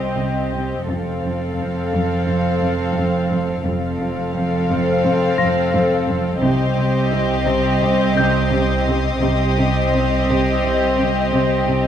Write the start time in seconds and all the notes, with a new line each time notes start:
Already playing: C2 C4 G4 D#5
0.18 C3
0.54 C3
0.88 F1 F2 C4 A4 F5
1.23 F2
1.57 F2
1.92 F2
2.27 F2
2.62 F2
2.96 F2
3.31 F2
3.65 F1 F2 C4 A4 F5
4.00 F2
4.35 F2
4.70 F2
5.05 F2
5.38 F2 C6 A#6
5.73 F2
6.07 F2
6.42 C2 C3 C4 G4 D#5 C6 D6
6.77 C3
7.12 C3
7.46 C3
7.81 C3 D#6
8.17 C3 G6
8.51 C3
8.87 C3
9.22 C2 C3 C4 G4 D#5
9.58 C3
9.92 C3
10.28 C3
10.63 C3
10.98 C3
11.33 C3
11.68 C3